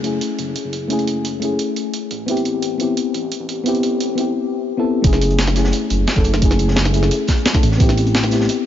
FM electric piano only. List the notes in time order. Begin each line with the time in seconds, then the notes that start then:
Already playing: A3 C#4 E4 G#4
0.02 A3 C#4 E4
0.06 G#4
0.88 A3 C#4 E4
0.93 G#4
1.40 A3 C#4 E4
1.45 G#4
2.26 B3 C4 E4
2.31 G4
2.78 B3 C4 E4
2.83 G4
3.64 B3 C4 E4
3.68 G4
4.15 B3 C4 E4
4.20 G4
4.77 B3 C4 E4 A4
5.02 A3 C#4 E4
5.07 G#4
5.53 A3 C#4 E4
5.58 G#4
6.15 A3 C#4 E4 A4
6.40 A3 C#4 E4
6.45 G#4
6.92 A3 C#4 E4
6.96 G#4
7.53 A3 C#4 E4 A4
7.77 B3 C4 E4
7.82 G4
8.29 B3 C4 E4
8.34 G4